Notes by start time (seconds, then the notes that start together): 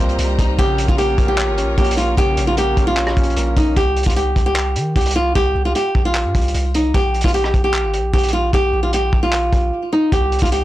Already playing: C3 G3 C4 F4 G4 C5 D#5 A#5
0.00 C2 A#3
0.09 closed hi-hat
0.19 C2 G3, closed hi-hat
0.39 C2 D#4, kick, closed hi-hat
0.58 A#1 C#3 F4 G4 A#4 C#5, kick, closed hi-hat
0.78 closed hi-hat
0.88 A#1 F4, kick
0.98 A#3 G4, closed hi-hat
1.18 A#1 C#4, kick, closed hi-hat
1.28 G4
1.38 C#5, clap, closed hi-hat
1.48 G#1
1.58 C#4, closed hi-hat
1.63 A#1
1.78 A#1 A#3 G4, kick, closed hi-hat
1.84 closed hi-hat
1.91 closed hi-hat
1.97 F4, closed hi-hat
2.17 A#1 C#3 G4, kick, closed hi-hat
2.37 A#1, closed hi-hat
2.47 F4
2.57 A#3 G4, closed hi-hat
2.77 A#1 C#4, kick, closed hi-hat
2.87 F4
2.97 C#5, clap, closed hi-hat
3.07 cross-stick
3.17 A#1 C#4, kick, closed hi-hat
3.23 closed hi-hat
3.30 closed hi-hat
3.36 A#1 A#3, closed hi-hat
3.57 A#1 D#4, kick, closed hi-hat
3.76 C2 G4, kick, closed hi-hat
3.96 closed hi-hat
4.03 C2 F4, kick, closed hi-hat
4.10 closed hi-hat
4.16 G4, closed hi-hat
4.36 C2, kick, closed hi-hat
4.46 G4
4.56 clap, closed hi-hat
4.76 D#3, closed hi-hat
4.96 C2 G4, kick, closed hi-hat
5.01 closed hi-hat
5.06 closed hi-hat
5.11 closed hi-hat
5.16 F4
5.35 C2 G4, kick, closed hi-hat
5.55 C2
5.65 F4
5.75 G4, closed hi-hat
5.95 A#1, kick
6.05 F4
6.15 clap, closed hi-hat
6.25 G2
6.35 C2, kick, closed hi-hat
6.41 closed hi-hat
6.48 closed hi-hat
6.54 C2, closed hi-hat
6.74 D#4, closed hi-hat
6.94 A#1 G4, kick, closed hi-hat
7.14 closed hi-hat
7.21 A#1 F4, kick, closed hi-hat
7.28 closed hi-hat
7.34 G4, closed hi-hat
7.44 cross-stick
7.54 A#1, kick, closed hi-hat
7.64 G4
7.74 clap, closed hi-hat
7.84 G#1
7.94 closed hi-hat
7.99 A#1
8.13 A#1 G4, kick, closed hi-hat
8.18 closed hi-hat
8.23 closed hi-hat
8.28 closed hi-hat
8.33 F4
8.53 A#1 G4, kick, closed hi-hat
8.73 A#1
8.83 F4
8.93 G4, closed hi-hat
9.13 A#1, kick
9.23 F4
9.33 clap, closed hi-hat
9.53 A#1, kick, closed hi-hat
9.93 D#4
10.12 C2 G4, kick, closed hi-hat
10.32 closed hi-hat
10.39 C2 F4, kick, closed hi-hat
10.45 closed hi-hat
10.52 G4, closed hi-hat